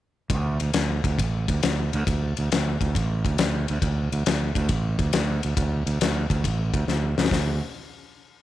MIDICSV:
0, 0, Header, 1, 3, 480
1, 0, Start_track
1, 0, Tempo, 438276
1, 335, Time_signature, 4, 2, 24, 8
1, 9222, End_track
2, 0, Start_track
2, 0, Title_t, "Fingered electric bass"
2, 0, Program_c, 0, 33
2, 334, Note_on_c, 0, 38, 85
2, 624, Note_off_c, 0, 38, 0
2, 667, Note_on_c, 0, 38, 88
2, 803, Note_off_c, 0, 38, 0
2, 814, Note_on_c, 0, 38, 89
2, 1105, Note_off_c, 0, 38, 0
2, 1140, Note_on_c, 0, 38, 83
2, 1281, Note_off_c, 0, 38, 0
2, 1300, Note_on_c, 0, 33, 89
2, 1590, Note_off_c, 0, 33, 0
2, 1629, Note_on_c, 0, 38, 86
2, 1767, Note_off_c, 0, 38, 0
2, 1796, Note_on_c, 0, 38, 86
2, 2080, Note_off_c, 0, 38, 0
2, 2123, Note_on_c, 0, 38, 84
2, 2256, Note_off_c, 0, 38, 0
2, 2270, Note_on_c, 0, 38, 88
2, 2557, Note_off_c, 0, 38, 0
2, 2613, Note_on_c, 0, 38, 80
2, 2742, Note_off_c, 0, 38, 0
2, 2766, Note_on_c, 0, 38, 82
2, 3047, Note_off_c, 0, 38, 0
2, 3078, Note_on_c, 0, 38, 88
2, 3214, Note_off_c, 0, 38, 0
2, 3234, Note_on_c, 0, 33, 88
2, 3520, Note_off_c, 0, 33, 0
2, 3558, Note_on_c, 0, 38, 84
2, 3694, Note_off_c, 0, 38, 0
2, 3724, Note_on_c, 0, 38, 82
2, 4006, Note_off_c, 0, 38, 0
2, 4051, Note_on_c, 0, 38, 85
2, 4173, Note_off_c, 0, 38, 0
2, 4180, Note_on_c, 0, 38, 90
2, 4472, Note_off_c, 0, 38, 0
2, 4515, Note_on_c, 0, 38, 82
2, 4652, Note_off_c, 0, 38, 0
2, 4675, Note_on_c, 0, 38, 84
2, 4960, Note_off_c, 0, 38, 0
2, 4990, Note_on_c, 0, 38, 91
2, 5129, Note_off_c, 0, 38, 0
2, 5138, Note_on_c, 0, 33, 95
2, 5429, Note_off_c, 0, 33, 0
2, 5468, Note_on_c, 0, 38, 88
2, 5607, Note_off_c, 0, 38, 0
2, 5637, Note_on_c, 0, 38, 90
2, 5919, Note_off_c, 0, 38, 0
2, 5965, Note_on_c, 0, 38, 88
2, 6095, Note_off_c, 0, 38, 0
2, 6101, Note_on_c, 0, 38, 93
2, 6389, Note_off_c, 0, 38, 0
2, 6423, Note_on_c, 0, 38, 87
2, 6562, Note_off_c, 0, 38, 0
2, 6589, Note_on_c, 0, 38, 89
2, 6872, Note_off_c, 0, 38, 0
2, 6899, Note_on_c, 0, 38, 84
2, 7039, Note_off_c, 0, 38, 0
2, 7061, Note_on_c, 0, 33, 88
2, 7346, Note_off_c, 0, 33, 0
2, 7379, Note_on_c, 0, 38, 90
2, 7517, Note_off_c, 0, 38, 0
2, 7531, Note_on_c, 0, 38, 81
2, 7819, Note_off_c, 0, 38, 0
2, 7869, Note_on_c, 0, 38, 86
2, 8002, Note_off_c, 0, 38, 0
2, 8007, Note_on_c, 0, 38, 86
2, 8311, Note_off_c, 0, 38, 0
2, 9222, End_track
3, 0, Start_track
3, 0, Title_t, "Drums"
3, 326, Note_on_c, 9, 36, 109
3, 327, Note_on_c, 9, 51, 93
3, 436, Note_off_c, 9, 36, 0
3, 437, Note_off_c, 9, 51, 0
3, 655, Note_on_c, 9, 51, 74
3, 764, Note_off_c, 9, 51, 0
3, 805, Note_on_c, 9, 51, 100
3, 814, Note_on_c, 9, 38, 102
3, 915, Note_off_c, 9, 51, 0
3, 924, Note_off_c, 9, 38, 0
3, 1139, Note_on_c, 9, 36, 87
3, 1144, Note_on_c, 9, 51, 75
3, 1249, Note_off_c, 9, 36, 0
3, 1253, Note_off_c, 9, 51, 0
3, 1298, Note_on_c, 9, 36, 83
3, 1305, Note_on_c, 9, 51, 94
3, 1408, Note_off_c, 9, 36, 0
3, 1415, Note_off_c, 9, 51, 0
3, 1625, Note_on_c, 9, 36, 79
3, 1626, Note_on_c, 9, 51, 73
3, 1734, Note_off_c, 9, 36, 0
3, 1736, Note_off_c, 9, 51, 0
3, 1782, Note_on_c, 9, 51, 96
3, 1790, Note_on_c, 9, 38, 109
3, 1891, Note_off_c, 9, 51, 0
3, 1900, Note_off_c, 9, 38, 0
3, 2115, Note_on_c, 9, 51, 71
3, 2225, Note_off_c, 9, 51, 0
3, 2266, Note_on_c, 9, 36, 106
3, 2270, Note_on_c, 9, 51, 93
3, 2376, Note_off_c, 9, 36, 0
3, 2380, Note_off_c, 9, 51, 0
3, 2592, Note_on_c, 9, 51, 73
3, 2702, Note_off_c, 9, 51, 0
3, 2757, Note_on_c, 9, 51, 95
3, 2765, Note_on_c, 9, 38, 102
3, 2866, Note_off_c, 9, 51, 0
3, 2875, Note_off_c, 9, 38, 0
3, 3074, Note_on_c, 9, 36, 88
3, 3079, Note_on_c, 9, 51, 65
3, 3184, Note_off_c, 9, 36, 0
3, 3189, Note_off_c, 9, 51, 0
3, 3231, Note_on_c, 9, 36, 84
3, 3241, Note_on_c, 9, 51, 85
3, 3341, Note_off_c, 9, 36, 0
3, 3351, Note_off_c, 9, 51, 0
3, 3555, Note_on_c, 9, 36, 84
3, 3564, Note_on_c, 9, 51, 69
3, 3665, Note_off_c, 9, 36, 0
3, 3673, Note_off_c, 9, 51, 0
3, 3704, Note_on_c, 9, 51, 87
3, 3713, Note_on_c, 9, 38, 112
3, 3814, Note_off_c, 9, 51, 0
3, 3823, Note_off_c, 9, 38, 0
3, 4032, Note_on_c, 9, 51, 70
3, 4142, Note_off_c, 9, 51, 0
3, 4184, Note_on_c, 9, 36, 108
3, 4185, Note_on_c, 9, 51, 93
3, 4293, Note_off_c, 9, 36, 0
3, 4294, Note_off_c, 9, 51, 0
3, 4517, Note_on_c, 9, 51, 73
3, 4626, Note_off_c, 9, 51, 0
3, 4667, Note_on_c, 9, 51, 90
3, 4676, Note_on_c, 9, 38, 104
3, 4777, Note_off_c, 9, 51, 0
3, 4785, Note_off_c, 9, 38, 0
3, 4988, Note_on_c, 9, 36, 84
3, 4994, Note_on_c, 9, 51, 75
3, 5097, Note_off_c, 9, 36, 0
3, 5103, Note_off_c, 9, 51, 0
3, 5134, Note_on_c, 9, 51, 89
3, 5140, Note_on_c, 9, 36, 86
3, 5243, Note_off_c, 9, 51, 0
3, 5249, Note_off_c, 9, 36, 0
3, 5464, Note_on_c, 9, 36, 89
3, 5465, Note_on_c, 9, 51, 72
3, 5573, Note_off_c, 9, 36, 0
3, 5575, Note_off_c, 9, 51, 0
3, 5616, Note_on_c, 9, 51, 104
3, 5625, Note_on_c, 9, 38, 104
3, 5726, Note_off_c, 9, 51, 0
3, 5735, Note_off_c, 9, 38, 0
3, 5946, Note_on_c, 9, 51, 76
3, 6056, Note_off_c, 9, 51, 0
3, 6100, Note_on_c, 9, 36, 109
3, 6100, Note_on_c, 9, 51, 100
3, 6209, Note_off_c, 9, 36, 0
3, 6210, Note_off_c, 9, 51, 0
3, 6427, Note_on_c, 9, 51, 77
3, 6537, Note_off_c, 9, 51, 0
3, 6582, Note_on_c, 9, 51, 97
3, 6591, Note_on_c, 9, 38, 104
3, 6692, Note_off_c, 9, 51, 0
3, 6701, Note_off_c, 9, 38, 0
3, 6901, Note_on_c, 9, 36, 90
3, 6907, Note_on_c, 9, 51, 71
3, 7010, Note_off_c, 9, 36, 0
3, 7017, Note_off_c, 9, 51, 0
3, 7056, Note_on_c, 9, 36, 85
3, 7061, Note_on_c, 9, 51, 92
3, 7165, Note_off_c, 9, 36, 0
3, 7171, Note_off_c, 9, 51, 0
3, 7377, Note_on_c, 9, 36, 85
3, 7378, Note_on_c, 9, 51, 69
3, 7487, Note_off_c, 9, 36, 0
3, 7488, Note_off_c, 9, 51, 0
3, 7538, Note_on_c, 9, 38, 62
3, 7647, Note_off_c, 9, 38, 0
3, 7862, Note_on_c, 9, 38, 90
3, 7936, Note_off_c, 9, 38, 0
3, 7936, Note_on_c, 9, 38, 88
3, 8009, Note_on_c, 9, 36, 94
3, 8012, Note_on_c, 9, 46, 81
3, 8021, Note_off_c, 9, 38, 0
3, 8021, Note_on_c, 9, 38, 99
3, 8119, Note_off_c, 9, 36, 0
3, 8122, Note_off_c, 9, 46, 0
3, 8130, Note_off_c, 9, 38, 0
3, 9222, End_track
0, 0, End_of_file